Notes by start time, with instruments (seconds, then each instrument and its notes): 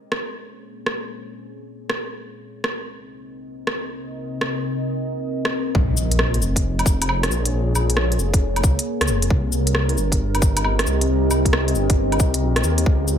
Already playing: ambient pad A#3 G#4 C5 C#5
0.12 cross-stick
0.86 cross-stick
1.90 cross-stick
2.19 ambient pad C3 C4 A#4 D#5
2.64 cross-stick
3.67 cross-stick
4.41 cross-stick
5.45 cross-stick
5.75 detuned saw bass A#1, ambient pad A#3 G#4 C5 C#5, kick, impact
5.96 detuned saw bass A#1, cabasa
6.11 closed hi-hat
6.19 cross-stick
6.34 closed hi-hat
6.41 detuned saw bass F1, cabasa
6.56 kick, closed hi-hat
6.79 closed hi-hat, low woodblock
6.86 kick, cabasa
7.02 closed hi-hat, low woodblock
7.09 low woodblock
7.23 cross-stick, closed hi-hat
7.30 detuned saw bass A#1, cabasa
7.45 closed hi-hat
7.52 detuned saw bass A#1, ambient pad A#4
7.75 detuned saw bass A#1, cabasa, low woodblock
7.90 closed hi-hat
7.97 cross-stick
8.12 closed hi-hat
8.19 detuned saw bass F1, cabasa
8.34 kick, closed hi-hat
8.56 closed hi-hat, low woodblock
8.64 detuned saw bass C#2, kick, cabasa
8.79 closed hi-hat
9.01 detuned saw bass C#2, cross-stick, closed hi-hat
9.08 detuned saw bass F1, cabasa
9.22 closed hi-hat
9.30 detuned saw bass C2, ambient pad C4 G4 D#5, kick
9.52 detuned saw bass C2, cabasa
9.67 closed hi-hat
9.75 cross-stick
9.89 closed hi-hat
9.98 detuned saw bass G1, cabasa
10.12 kick, closed hi-hat
10.35 closed hi-hat, low woodblock
10.42 kick, cabasa
10.57 closed hi-hat, low woodblock
10.64 low woodblock
10.79 cross-stick, closed hi-hat
10.86 detuned saw bass C2, cabasa
11.01 closed hi-hat
11.09 detuned saw bass C2
11.31 detuned saw bass C2, cabasa, low woodblock
11.45 kick, closed hi-hat
11.53 cross-stick
11.68 closed hi-hat
11.75 detuned saw bass G1, cabasa
11.90 kick, closed hi-hat
12.12 closed hi-hat, low woodblock
12.20 detuned saw bass C2, kick, cabasa
12.34 closed hi-hat
12.42 detuned saw bass A#1
12.56 cross-stick, closed hi-hat
12.64 detuned saw bass D#2, cabasa
12.78 closed hi-hat
12.86 detuned saw bass C#2, ambient pad C#4 G#4 C5 F5, kick
13.08 detuned saw bass C#2, cabasa